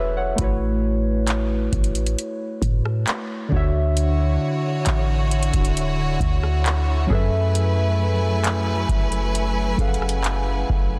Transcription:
Already playing: 808-style bass E1, synth keys F#3 C#4 E4 F#4 G#4 B4 C#5 E5
0.17 synth keys C#5 F#5
0.36 808-style bass A1, synth keys A3 E4, kick, closed hi-hat
0.40 synth keys F#4 B4 C#5
1.27 clap, closed hi-hat
1.72 808-style bass A1, kick, closed hi-hat
1.84 closed hi-hat
1.95 closed hi-hat
2.06 closed hi-hat
2.19 closed hi-hat
2.62 808-style bass A2, kick, closed hi-hat
2.85 cross-stick
3.07 clap, closed hi-hat
3.48 808-style bass D2, synth keys D3 D4, kick
3.52 synth keys F#4 C#5 E5
3.97 string section D3 E4 F#4 C#5, closed hi-hat
4.86 808-style bass A1, clap, closed hi-hat
5.31 closed hi-hat
5.43 closed hi-hat
5.53 808-style bass D1, kick, closed hi-hat
5.65 closed hi-hat
5.77 closed hi-hat
6.20 808-style bass D2, kick, closed hi-hat
6.43 cross-stick
6.66 clap, closed hi-hat
7.07 808-style bass F#2, synth keys F#3 C#4 G#4, kick
7.11 string section F#3 A3 B4 G#5, synth keys A4 B4 E5
7.55 closed hi-hat
8.44 clap, closed hi-hat
8.89 808-style bass F#1, kick, closed hi-hat
9.12 closed hi-hat
9.35 closed hi-hat
9.77 808-style bass F#1, synth keys F#3 C#4 G#4 A4 B4, kick, closed hi-hat
9.81 synth keys F5
9.87 synth keys F#5
9.94 closed hi-hat
10.02 cross-stick
10.09 closed hi-hat
10.24 clap, closed hi-hat
10.69 808-style bass F#1, kick

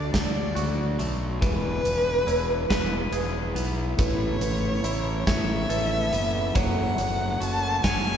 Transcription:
Already playing: fingered electric bass D2, clean electric guitar D3 D4, string section D3 F#3 A3 F#4, violin D5
0.14 fingered electric bass D2, violin D5, kick, snare, closed hi-hat
0.55 fingered electric bass D2, clean electric guitar F#4, felt piano C#6, closed hi-hat
0.99 fingered electric bass B1, clean electric guitar A3, closed hi-hat
1.41 fingered electric bass E1, clean electric guitar E3, string section G#3 B3 E4, felt piano B4, violin B4, kick, closed hi-hat
1.84 fingered electric bass E1, felt piano B4, closed hi-hat
2.27 fingered electric bass E1, clean electric guitar E4, felt piano C#5, closed hi-hat
2.70 fingered electric bass E1, clean electric guitar B4, kick, snare, closed hi-hat
3.12 fingered electric bass E1, clean electric guitar G#4, felt piano B4, closed hi-hat
3.56 fingered electric bass B1, clean electric guitar B3, closed hi-hat
3.98 fingered electric bass A1, string section C#3 E3 A3, clean electric guitar A3, felt piano B4, violin C#5, kick, closed hi-hat
4.41 fingered electric bass A1, felt piano B4, closed hi-hat
4.84 fingered electric bass A1, clean electric guitar E4, felt piano C#5, closed hi-hat
5.27 fingered electric bass A1, clean electric guitar C#5, violin E5, kick, snare, closed hi-hat
5.69 fingered electric bass A1, clean electric guitar A4, felt piano B4, closed hi-hat
6.12 fingered electric bass F#1, clean electric guitar B3, closed hi-hat
6.55 fingered electric bass F#1, clean electric guitar F#3, string section F#3, felt piano C#5, violin F#5, kick, closed hi-hat
6.97 fingered electric bass F#1, felt piano C#5, closed hi-hat
7.40 fingered electric bass F#1, clean electric guitar F#4, violin A5, closed hi-hat
7.84 fingered electric bass F#1, clean electric guitar C#5, violin G#5, kick, snare, closed hi-hat

